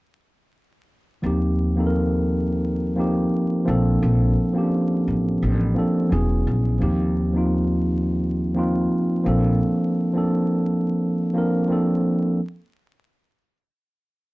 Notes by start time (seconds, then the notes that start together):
1.22 D#2 F3 A#3 C4 D#4
1.26 G4
1.75 F3 A#3 C4 D#4
1.80 A4
1.86 A#4
2.95 F3 A#3 C4 D#4
3.00 G4
3.65 A#1 F3 A#3 C4 D4
3.69 A4
4.03 A#1
4.53 F3 A#3 C4 C#4
4.58 G4
4.63 D4
5.08 A1
5.43 A1
5.74 F3 A#3 C4 D4
5.79 A4
6.09 E1 F#3 B3 C#4 E4
6.13 G#4
6.47 A#1
6.79 D#2 F3 A#3 C4 D#4
6.83 G4
7.33 F3 A#3 C4 D#4
7.38 F4
8.54 F3 A#3 C4 D#4
8.59 F4
9.24 A#1 F3 A#3 C4 D4
9.28 A4
10.13 F3 A#3 C4 D4
10.18 A4
11.34 F3 A#3 C4 D4
11.38 A#4
11.68 F3 A#3 C4 D4
11.72 A4